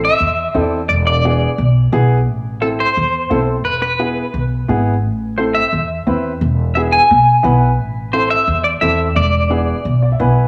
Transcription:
0.00 0.10 E4 medium
0.00 0.10 A4 medium
0.05 0.64 E5 loud
0.20 0.48 E2 medium
0.54 0.91 E2 medium
0.54 0.79 C4 medium
0.54 0.79 E4 medium
0.54 0.79 A4 medium
0.64 0.86 D5 loud
0.89 1.45 E1 loud
0.89 0.94 D5 medium
1.07 1.72 D5 medium
1.24 1.48 B3 medium
1.24 1.48 E4 medium
1.24 1.49 G#4 medium
1.58 1.86 B1 medium
1.92 2.27 B1 loud
1.92 2.17 B3 medium
1.92 2.17 E4 medium
1.92 2.17 G#4 medium
2.27 2.83 A1 loud
2.61 2.86 C4 medium
2.61 2.86 E4 medium
2.61 2.86 A4 medium
2.61 2.67 A4 medium
2.80 3.64 C5 loud
2.97 3.24 E2 medium
3.30 3.65 B1 medium
3.30 3.55 C4 medium
3.30 3.55 E4 medium
3.30 3.55 A4 medium
3.65 4.20 E1 loud
3.65 3.81 B4 loud
3.82 4.47 B4 medium
3.99 4.24 B3 medium
3.99 4.24 E4 medium
3.99 4.24 G#4 medium
4.34 4.62 B1 medium
4.68 5.03 G#1 medium
4.68 4.93 B3 medium
4.68 4.93 E4 medium
4.68 4.93 G#4 medium
5.03 5.58 A1 loud
5.38 5.62 C4 medium
5.38 5.62 E4 medium
5.38 5.62 A4 medium
5.38 5.43 C5 medium
5.55 6.37 E5 medium
5.73 6.00 E2 medium
6.07 6.43 E2 loud
6.07 6.31 C4 medium
6.07 6.31 E4 medium
6.07 6.31 B4 medium
6.41 6.96 E1 loud
6.75 7.00 B3 medium
6.75 7.00 E4 medium
6.75 7.00 G#4 medium
6.75 6.80 E5 medium
6.92 7.75 G#5 loud
7.11 7.38 B1 medium
7.43 7.78 B1 loud
7.43 7.68 B3 medium
7.43 7.68 E4 medium
7.43 7.68 B4 medium
7.78 8.34 A1 loud
8.13 8.37 C4 medium
8.13 8.37 E4 medium
8.13 8.38 A4 medium
8.13 8.29 C5 medium
8.30 8.62 E5 loud
8.48 8.75 E2 loud
8.64 8.69 D5 loud
8.81 9.17 E2 loud
8.81 9.06 C4 medium
8.81 9.06 E4 medium
8.81 9.06 A4 medium
8.81 9.14 E5 loud
9.16 9.71 E1 loud
9.16 10.33 D5 medium
9.50 9.75 B3 medium
9.50 9.75 E4 medium
9.50 9.75 G#4 medium
9.85 10.13 B1 medium
10.03 10.11 D5 medium
10.12 10.20 E5 medium
10.20 10.47 B1 medium
10.20 10.44 B3 medium
10.20 10.44 E4 medium
10.20 10.45 B4 medium
10.20 10.48 G#5 medium

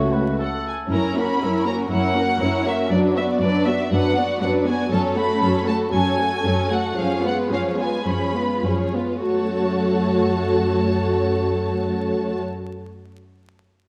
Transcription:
0.00 0.30 C#2 soft
0.00 0.35 A3 medium
0.00 0.35 A3 soft
0.00 0.61 A3 soft
0.00 0.64 A3 soft
0.00 0.65 C#4 soft
0.00 0.35 F#4 medium
0.00 0.14 C#5 soft
0.13 0.38 B4 soft
0.39 0.89 A4 soft
0.39 0.48 A4 soft
0.39 0.64 F#5 soft
0.67 0.75 G#5 soft
0.90 1.33 F#2 soft
0.90 1.13 C#4 soft
0.90 1.14 E4 soft
0.90 1.15 A#4 soft
0.90 1.15 C#5 soft
0.90 1.16 A#5 medium
1.14 1.40 A#3 soft
1.14 1.39 C#4 soft
1.14 1.42 F#4 soft
1.14 1.42 A#4 soft
1.14 1.66 B5 medium
1.40 1.83 F#2 medium
1.40 1.64 C#4 soft
1.40 1.66 E4 soft
1.40 1.67 A#4 soft
1.40 1.67 C#5 soft
1.65 1.91 A#3 soft
1.65 1.89 C#4 soft
1.65 1.92 F#4 soft
1.65 1.91 A#4 soft
1.65 1.74 A#5 medium
1.90 2.33 F#2 soft
1.90 2.14 C#4 soft
1.90 2.14 E4 soft
1.90 2.15 A#4 soft
1.90 2.15 C#5 soft
1.90 2.64 F#5 medium
2.16 2.41 A#3 soft
2.16 2.40 C#4 soft
2.16 2.41 F#4 soft
2.16 2.40 A#4 soft
2.41 2.83 F#2 medium
2.41 2.65 C#4 soft
2.41 2.66 E4 soft
2.41 2.65 A#4 soft
2.41 2.66 C#5 soft
2.66 2.91 A#3 soft
2.66 2.91 C#4 soft
2.66 2.91 F#4 soft
2.66 2.91 A#4 soft
2.66 2.91 E5 medium
2.90 3.33 F#2 medium
2.90 3.14 F#3 soft
2.90 3.14 D4 soft
2.90 3.14 B4 soft
2.90 2.98 D5 medium
3.16 3.41 B3 soft
3.16 3.41 F#4 soft
3.16 3.41 D5 soft
3.16 3.24 E5 medium
3.41 3.83 F#2 medium
3.41 3.66 F#3 soft
3.41 3.66 D4 soft
3.41 3.66 B4 soft
3.41 3.66 D5 medium
3.65 3.91 B3 soft
3.65 3.91 F#4 soft
3.65 3.91 D5 soft
3.65 3.90 E5 medium
3.92 4.33 F#2 medium
3.92 4.14 F#3 soft
3.92 4.15 D4 soft
3.92 4.15 B4 soft
3.92 4.40 F#5 medium
4.16 4.41 B3 soft
4.16 4.41 F#4 soft
4.16 4.41 D5 soft
4.40 4.83 F#2 medium
4.40 4.65 F#3 soft
4.40 4.66 D4 soft
4.40 4.66 B4 soft
4.40 4.49 F#5 medium
4.65 4.90 B3 soft
4.65 4.91 F#4 soft
4.65 4.91 D5 soft
4.65 4.91 G#5 medium
4.89 5.33 F#2 medium
4.89 5.13 F#3 soft
4.89 5.13 C#4 medium
4.89 5.14 A4 medium
4.89 5.14 C#5 soft
4.89 5.00 A5 medium
5.16 5.41 A3 soft
5.16 5.41 F#4 soft
5.16 5.40 A4 soft
5.16 5.66 B5 medium
5.41 5.85 F#2 medium
5.41 5.67 F#3 soft
5.41 5.66 C#4 soft
5.41 5.64 A4 soft
5.41 5.66 C#5 soft
5.66 5.92 A3 soft
5.66 5.92 F#4 soft
5.66 5.91 A4 soft
5.66 5.75 A5 medium
5.91 6.37 F#2 medium
5.91 6.16 F#3 soft
5.91 6.16 C#4 soft
5.91 6.16 A4 soft
5.91 6.16 C#5 soft
5.91 6.69 G#5 medium
6.18 6.44 A3 soft
6.18 6.45 F#4 soft
6.18 6.43 A4 soft
6.43 6.89 F#2 medium
6.43 6.70 F#3 soft
6.43 6.70 C#4 soft
6.43 6.70 A4 soft
6.43 6.71 C#5 soft
6.70 6.97 A3 soft
6.70 6.97 F#4 soft
6.70 6.98 A4 soft
6.70 6.98 F#5 medium
6.96 7.43 F#2 medium
6.96 7.22 F3 soft
6.96 7.22 C#4 soft
6.96 7.22 G#4 soft
6.96 7.23 C#5 soft
6.96 7.25 F5 medium
7.23 7.51 G#3 soft
7.23 7.51 B3 soft
7.23 7.51 F4 soft
7.23 7.51 B4 soft
7.23 7.35 F#5 medium
7.51 7.98 F#2 soft
7.51 7.79 F3 soft
7.51 7.79 C#4 soft
7.51 7.79 G#4 soft
7.51 7.79 C#5 soft
7.51 7.61 F5 medium
7.79 8.07 G#3 soft
7.79 8.07 B3 soft
7.79 8.07 F4 soft
7.79 8.07 B4 soft
7.79 8.07 G#5 medium
8.06 8.55 F#2 soft
8.06 8.33 F3 soft
8.06 8.33 C#4 soft
8.06 8.34 G#4 soft
8.06 8.34 C#5 soft
8.06 8.65 B5 medium
8.35 8.65 G#3 soft
8.35 8.65 B3 soft
8.35 8.65 F4 soft
8.35 8.65 B4 soft
8.64 9.16 F#2 soft
8.64 8.95 F3 soft
8.64 8.95 C#4 soft
8.64 8.95 G#4 soft
8.64 8.96 C#5 soft
8.94 9.25 G#3 soft
8.94 9.25 B3 soft
8.94 9.25 F4 soft
8.94 9.25 B4 soft
9.24 12.40 F#2 soft
9.24 12.39 A3 soft
9.24 12.39 F#4 soft
9.24 12.39 C#5 soft
9.24 12.38 A5 soft

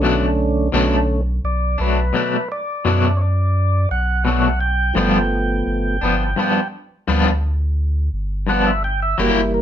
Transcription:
0.00 0.69 B1 medium
0.00 0.24 B2 medium
0.00 0.68 D3 medium
0.00 0.24 F#3 medium
0.00 0.68 A3 soft
0.00 0.25 A3 medium
0.00 0.69 C#4 medium
0.00 1.06 D4 medium
0.05 0.25 D4 medium
0.72 1.40 B1 loud
0.72 0.94 B2 medium
0.72 1.21 D3 medium
0.72 0.95 F#3 medium
0.72 0.95 A3 medium
0.72 1.21 A3 soft
0.72 1.21 C#4 medium
0.72 0.95 D4 loud
1.44 1.76 B1 medium
1.44 1.79 D5 medium
1.78 2.12 B1 loud
1.78 2.01 F#3 soft
1.78 2.00 A3 soft
1.78 2.00 D4 medium
1.78 2.48 B4 medium
2.13 2.35 B2 medium
2.13 2.35 F#3 medium
2.13 2.36 A3 medium
2.13 2.36 D4 medium
2.52 3.19 D5 medium
2.85 3.86 F#2 loud
2.85 3.06 B2 medium
2.85 3.06 F#3 medium
2.85 3.07 A3 medium
2.85 3.07 D4 medium
3.17 3.21 C#5 medium
3.22 3.89 D5 medium
3.91 4.92 B1 medium
3.91 4.24 F#5 medium
4.25 4.46 B2 medium
4.25 4.47 F#3 medium
4.25 4.48 A3 medium
4.25 4.48 D4 medium
4.25 4.59 F#5 loud
4.60 6.68 G5 loud
4.94 5.62 G1 loud
4.94 5.17 G2 medium
4.94 5.96 F3 medium
4.94 5.17 F3 medium
4.94 5.97 A3 soft
4.94 5.97 B3 medium
4.94 5.18 B3 medium
4.94 5.18 D4 medium
5.67 5.99 G1 medium
6.01 6.34 G1 loud
6.01 6.24 F3 soft
6.01 6.23 B3 medium
6.01 6.23 D4 medium
6.36 6.58 G2 medium
6.36 6.58 F3 medium
6.36 6.59 B3 medium
6.36 6.59 D4 medium
7.08 8.09 D2 loud
7.08 7.28 G2 medium
7.08 7.29 F3 loud
7.08 7.29 B3 medium
7.08 7.29 D4 loud
8.13 9.15 G1 medium
8.47 8.68 G2 medium
8.47 8.69 F3 medium
8.47 8.70 B3 medium
8.47 8.70 D4 medium
8.47 8.65 F#5 loud
8.67 8.83 E5 medium
8.84 9.00 G5 medium
9.02 9.18 E5 loud
9.18 9.62 F#1 medium
9.18 9.62 E3 medium
9.18 9.39 F#3 medium
9.18 9.62 G3 soft
9.18 9.40 A#3 medium
9.18 9.62 A#3 medium
9.18 9.40 E4 loud
9.18 9.36 F#4 medium
9.18 9.40 G4 medium
9.36 9.52 E4 medium
9.54 9.62 A#4 medium

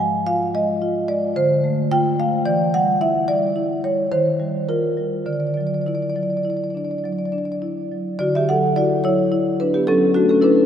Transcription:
0.00 1.32 F3 soft
0.00 0.43 G#3 soft
0.00 0.25 G#5 medium
0.26 0.71 F4 medium
0.26 0.53 F5 medium
0.55 0.98 G#3 soft
0.55 1.07 D#5 medium
0.82 1.25 F4 medium
1.08 1.36 G#3 soft
1.08 1.35 D5 medium
1.36 2.43 D3 medium
1.36 1.89 C5 medium
1.64 2.08 A3 medium
1.91 2.35 F4 medium
1.91 2.18 G5 loud
2.20 2.47 A3 soft
2.20 2.45 F5 medium
2.45 4.07 E3 medium
2.45 2.72 D5 medium
2.74 3.18 G3 medium
2.74 3.00 F#5 loud
3.01 3.45 E4 medium
3.01 3.27 E5 medium
3.28 3.72 G3 medium
3.28 3.81 D5 medium
3.56 4.00 E4 soft
3.84 4.12 G3 soft
3.84 4.11 C#5 medium
4.12 5.23 D#3 medium
4.12 4.66 C5 medium
4.39 4.85 G3 soft
4.69 5.15 F4 medium
4.69 5.25 A#4 medium
4.97 5.27 G3 soft
5.26 8.14 D3 medium
5.26 5.33 D5 medium
5.33 5.40 D5 soft
5.40 5.47 D5 soft
5.47 5.54 D5 soft
5.54 6.04 F#3 soft
5.54 5.61 D5 soft
5.61 5.67 D5 soft
5.67 5.74 D5 soft
5.74 5.82 D5 soft
5.82 5.88 D5 soft
5.86 6.34 E4 soft
5.86 5.95 D5 soft
5.95 6.02 D5 soft
6.02 6.09 D5 soft
6.09 6.16 D5 soft
6.16 6.63 F#3 soft
6.16 6.23 D5 soft
6.23 6.30 D5 soft
6.30 6.37 D5 soft
6.37 6.43 D5 soft
6.43 6.92 E4 soft
6.43 6.50 D5 soft
6.50 6.57 D5 soft
6.57 6.64 D5 soft
6.64 6.70 D5 soft
6.70 6.77 D5 soft
6.75 7.21 D4 soft
6.75 6.85 D5 soft
6.85 6.91 D5 soft
6.91 6.98 D5 soft
6.98 7.05 D5 soft
7.04 7.50 F#3 soft
7.04 7.13 D5 soft
7.13 7.19 D5 soft
7.19 7.26 D5 soft
7.26 7.32 D5 soft
7.32 7.79 D4 soft
7.32 7.38 D5 soft
7.38 7.45 D5 soft
7.45 7.52 D5 soft
7.52 7.57 D5 soft
7.62 8.08 E4 soft
7.91 8.20 F#3 soft
8.19 10.66 D3 medium
8.19 8.33 F#4 medium
8.19 8.33 D5 medium
8.35 8.48 G4 medium
8.35 8.48 E5 medium
8.49 8.93 F#3 soft
8.49 8.75 A4 medium
8.49 8.75 F#5 medium
8.76 9.04 E4 medium
8.76 9.03 F#4 medium
8.76 9.03 D5 medium
9.04 9.49 F#3 soft
9.04 9.31 E4 medium
9.04 9.58 C#5 medium
9.32 9.77 E4 medium
9.60 9.74 D4 medium
9.60 9.74 B4 medium
9.74 9.88 B3 soft
9.74 9.88 G4 medium
9.87 10.32 F#3 medium
9.87 10.14 C#4 medium
9.87 10.14 A4 medium
10.14 10.29 A3 medium
10.14 10.42 D4 medium
10.14 10.29 F#4 medium
10.29 10.43 C#4 medium
10.29 10.43 A4 medium
10.42 10.66 D4 medium
10.42 10.66 E4 medium
10.42 10.66 B4 medium

